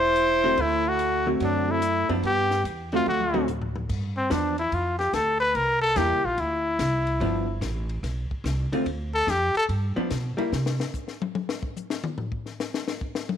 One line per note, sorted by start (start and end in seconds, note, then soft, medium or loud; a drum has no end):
0.00 0.54 E1 medium
0.00 0.61 E4 medium
0.00 0.62 C5 loud
0.16 hi-hat pedal medium
0.16 ride medium
0.44 0.56 D3 medium
0.44 0.56 A3 medium
0.44 0.57 C4 medium
0.44 0.57 F#4 medium
0.57 1.36 D2 medium
0.57 0.86 A3 medium
0.57 0.90 E4 medium
0.57 ride medium
0.86 1.27 A3 medium
0.86 1.28 F#4 medium
0.99 hi-hat pedal medium
0.99 ride medium
1.26 1.79 D3 medium
1.26 1.79 A3 medium
1.26 1.79 C4 medium
1.26 1.80 F#4 medium
1.40 2.05 F#2 medium
1.40 1.70 F#3 medium
1.40 1.73 D4 medium
1.40 ride medium
1.69 2.10 A3 medium
1.69 2.11 E4 loud
1.82 hi-hat pedal medium
1.82 ride medium
2.09 2.22 F#2 medium
2.09 2.22 F3 medium
2.09 2.22 B3 medium
2.09 2.22 D4 medium
2.09 ride soft
2.22 2.61 G2 medium
2.22 2.62 B3 medium
2.22 2.63 G4 medium
2.22 ride medium
2.51 snare medium
2.64 3.03 E2 medium
2.64 hi-hat pedal medium
2.64 ride medium
2.92 3.05 D3 medium
2.92 3.05 A3 medium
2.92 3.06 A3 medium
2.92 3.05 C4 medium
2.92 3.07 F4 medium
2.92 3.06 F#4 medium
2.92 ride soft
3.06 3.85 D2 medium
3.06 3.45 A3 medium
3.06 3.46 F#4 medium
3.06 high tom soft
3.20 high tom medium
3.33 3.46 D3 medium
3.33 3.46 A3 medium
3.33 3.47 C4 medium
3.33 3.47 F#4 medium
3.33 high tom medium
3.48 floor tom medium
3.48 hi-hat pedal medium
3.62 floor tom medium
3.76 floor tom medium
3.89 4.29 G2 medium
3.89 kick medium
3.89 crash medium
4.17 4.33 C4 medium
4.30 4.71 E2 loud
4.30 4.55 F3 soft
4.30 4.55 B3 medium
4.30 4.55 D4 medium
4.30 4.58 D4 medium
4.30 snare medium
4.30 hi-hat pedal soft
4.30 ride medium
4.58 4.76 E4 medium
4.58 ride soft
4.72 5.12 F2 medium
4.72 4.98 F4 medium
4.72 ride medium
4.99 5.16 G4 medium
4.99 snare soft
5.13 5.53 D2 medium
5.13 5.39 A4 medium
5.13 snare medium
5.13 hi-hat pedal medium
5.13 ride medium
5.40 5.57 B4 loud
5.40 ride soft
5.55 5.95 C2 medium
5.55 5.81 A#4 medium
5.55 ride medium
5.82 5.99 A4 loud
5.96 6.12 E2 medium
5.96 6.21 G3 medium
5.96 6.21 A#3 medium
5.96 6.21 E4 medium
5.96 6.26 G4 medium
5.96 snare medium
5.96 hi-hat pedal soft
5.96 ride medium
6.10 6.24 C2 soft
6.24 6.37 A#1 medium
6.24 6.42 F4 medium
6.38 6.78 D2 medium
6.38 7.63 E4 medium
6.38 ride medium
6.79 7.19 C2 loud
6.79 snare medium
6.79 hi-hat pedal soft
6.79 ride medium
7.07 ride soft
7.20 7.61 G1 medium
7.20 7.45 F3 medium
7.20 7.46 B3 medium
7.20 7.46 D4 medium
7.20 ride medium
7.61 8.02 A1 loud
7.61 snare medium
7.61 hi-hat pedal soft
7.61 ride medium
7.89 ride soft
8.03 8.29 B1 medium
8.03 snare soft
8.03 ride medium
8.31 muted upright bass stroke soft
8.31 kick medium
8.44 8.70 C2 loud
8.44 snare medium
8.44 hi-hat pedal medium
8.44 ride medium
8.72 8.85 D3 medium
8.72 8.85 A3 medium
8.72 8.86 C4 medium
8.72 8.86 F4 medium
8.72 ride medium
8.86 9.26 D2 medium
8.86 ride medium
9.14 9.31 A4 loud
9.27 9.53 F2 loud
9.27 9.56 G4 medium
9.27 snare medium
9.27 hi-hat pedal soft
9.27 ride medium
9.55 9.65 A4 loud
9.55 muted upright bass stroke soft
9.55 ride soft
9.69 9.94 G2 medium
9.69 ride medium
9.96 10.09 F3 medium
9.96 10.09 B3 medium
9.96 10.10 D4 medium
9.96 muted upright bass stroke soft
10.11 10.36 B2 medium
10.11 snare medium
10.11 hi-hat pedal medium
10.11 ride medium
10.37 10.50 G3 medium
10.37 10.51 A#3 medium
10.37 10.51 E4 medium
10.37 muted upright bass stroke soft
10.37 ride soft
10.52 10.79 C3 medium
10.52 snare medium
10.66 snare loud
10.80 snare medium
10.94 kick medium
10.94 hi-hat pedal medium
11.08 snare medium
11.22 high tom medium
11.35 high tom medium
11.49 snare loud
11.63 kick medium
11.76 hi-hat pedal medium
11.76 high tom soft
11.90 snare loud
12.04 mid tom loud
12.18 floor tom medium
12.32 kick medium
12.46 snare soft
12.60 snare medium
12.60 hi-hat pedal medium
12.74 snare loud
12.88 snare loud
13.01 kick medium
13.15 snare loud
13.29 high tom loud